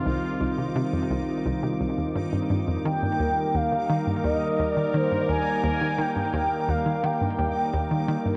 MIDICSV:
0, 0, Header, 1, 5, 480
1, 0, Start_track
1, 0, Tempo, 697674
1, 41, Time_signature, 4, 2, 24, 8
1, 5756, End_track
2, 0, Start_track
2, 0, Title_t, "Analog synth lead"
2, 0, Program_c, 0, 81
2, 1960, Note_on_c, 0, 79, 104
2, 2445, Note_on_c, 0, 77, 99
2, 2455, Note_off_c, 0, 79, 0
2, 2921, Note_off_c, 0, 77, 0
2, 2925, Note_on_c, 0, 75, 101
2, 3242, Note_off_c, 0, 75, 0
2, 3242, Note_on_c, 0, 74, 101
2, 3404, Note_on_c, 0, 72, 99
2, 3414, Note_off_c, 0, 74, 0
2, 3642, Note_off_c, 0, 72, 0
2, 3647, Note_on_c, 0, 80, 104
2, 3867, Note_off_c, 0, 80, 0
2, 3889, Note_on_c, 0, 80, 113
2, 4127, Note_on_c, 0, 79, 112
2, 4138, Note_off_c, 0, 80, 0
2, 4604, Note_on_c, 0, 77, 96
2, 4614, Note_off_c, 0, 79, 0
2, 4842, Note_on_c, 0, 79, 100
2, 4852, Note_off_c, 0, 77, 0
2, 5561, Note_off_c, 0, 79, 0
2, 5756, End_track
3, 0, Start_track
3, 0, Title_t, "Synth texture"
3, 0, Program_c, 1, 99
3, 0, Note_on_c, 1, 63, 82
3, 0, Note_on_c, 1, 86, 77
3, 5756, Note_off_c, 1, 63, 0
3, 5756, Note_off_c, 1, 86, 0
3, 5756, End_track
4, 0, Start_track
4, 0, Title_t, "Analog synth pad"
4, 0, Program_c, 2, 89
4, 0, Note_on_c, 2, 51, 84
4, 0, Note_on_c, 2, 55, 80
4, 0, Note_on_c, 2, 60, 80
4, 0, Note_on_c, 2, 65, 93
4, 1931, Note_off_c, 2, 65, 0
4, 1934, Note_off_c, 2, 60, 0
4, 1959, Note_on_c, 2, 58, 78
4, 1959, Note_on_c, 2, 70, 93
4, 5756, Note_off_c, 2, 51, 0
4, 5756, Note_off_c, 2, 55, 0
4, 5756, Note_off_c, 2, 58, 0
4, 5756, Note_off_c, 2, 70, 0
4, 5756, End_track
5, 0, Start_track
5, 0, Title_t, "Synth arpeggio sound"
5, 0, Program_c, 3, 84
5, 41, Note_on_c, 3, 36, 103
5, 127, Note_off_c, 3, 36, 0
5, 281, Note_on_c, 3, 36, 102
5, 315, Note_off_c, 3, 36, 0
5, 401, Note_on_c, 3, 48, 75
5, 435, Note_off_c, 3, 48, 0
5, 521, Note_on_c, 3, 48, 104
5, 555, Note_off_c, 3, 48, 0
5, 641, Note_on_c, 3, 41, 76
5, 699, Note_off_c, 3, 41, 0
5, 761, Note_on_c, 3, 36, 100
5, 847, Note_off_c, 3, 36, 0
5, 1003, Note_on_c, 3, 36, 98
5, 1036, Note_off_c, 3, 36, 0
5, 1121, Note_on_c, 3, 48, 78
5, 1156, Note_off_c, 3, 48, 0
5, 1243, Note_on_c, 3, 36, 80
5, 1300, Note_off_c, 3, 36, 0
5, 1363, Note_on_c, 3, 39, 76
5, 1448, Note_off_c, 3, 39, 0
5, 1482, Note_on_c, 3, 43, 101
5, 1516, Note_off_c, 3, 43, 0
5, 1602, Note_on_c, 3, 43, 74
5, 1688, Note_off_c, 3, 43, 0
5, 1721, Note_on_c, 3, 43, 98
5, 1808, Note_off_c, 3, 43, 0
5, 1842, Note_on_c, 3, 41, 77
5, 1899, Note_off_c, 3, 41, 0
5, 1963, Note_on_c, 3, 51, 101
5, 1997, Note_off_c, 3, 51, 0
5, 2083, Note_on_c, 3, 43, 75
5, 2140, Note_off_c, 3, 43, 0
5, 2200, Note_on_c, 3, 39, 100
5, 2287, Note_off_c, 3, 39, 0
5, 2440, Note_on_c, 3, 39, 97
5, 2475, Note_off_c, 3, 39, 0
5, 2561, Note_on_c, 3, 51, 76
5, 2595, Note_off_c, 3, 51, 0
5, 2680, Note_on_c, 3, 51, 99
5, 2715, Note_off_c, 3, 51, 0
5, 2800, Note_on_c, 3, 43, 75
5, 2858, Note_off_c, 3, 43, 0
5, 2919, Note_on_c, 3, 39, 100
5, 3007, Note_off_c, 3, 39, 0
5, 3160, Note_on_c, 3, 39, 104
5, 3195, Note_off_c, 3, 39, 0
5, 3280, Note_on_c, 3, 51, 76
5, 3315, Note_off_c, 3, 51, 0
5, 3399, Note_on_c, 3, 51, 96
5, 3435, Note_off_c, 3, 51, 0
5, 3520, Note_on_c, 3, 43, 77
5, 3578, Note_off_c, 3, 43, 0
5, 3640, Note_on_c, 3, 39, 98
5, 3727, Note_off_c, 3, 39, 0
5, 3878, Note_on_c, 3, 39, 105
5, 3914, Note_off_c, 3, 39, 0
5, 4000, Note_on_c, 3, 51, 77
5, 4035, Note_off_c, 3, 51, 0
5, 4117, Note_on_c, 3, 51, 99
5, 4154, Note_off_c, 3, 51, 0
5, 4239, Note_on_c, 3, 43, 75
5, 4298, Note_off_c, 3, 43, 0
5, 4359, Note_on_c, 3, 39, 106
5, 4447, Note_off_c, 3, 39, 0
5, 4598, Note_on_c, 3, 39, 101
5, 4634, Note_off_c, 3, 39, 0
5, 4720, Note_on_c, 3, 51, 74
5, 4755, Note_off_c, 3, 51, 0
5, 4841, Note_on_c, 3, 51, 102
5, 4876, Note_off_c, 3, 51, 0
5, 4962, Note_on_c, 3, 43, 79
5, 5019, Note_off_c, 3, 43, 0
5, 5082, Note_on_c, 3, 39, 103
5, 5168, Note_off_c, 3, 39, 0
5, 5322, Note_on_c, 3, 39, 98
5, 5356, Note_off_c, 3, 39, 0
5, 5443, Note_on_c, 3, 51, 76
5, 5476, Note_off_c, 3, 51, 0
5, 5561, Note_on_c, 3, 51, 100
5, 5596, Note_off_c, 3, 51, 0
5, 5681, Note_on_c, 3, 43, 75
5, 5739, Note_off_c, 3, 43, 0
5, 5756, End_track
0, 0, End_of_file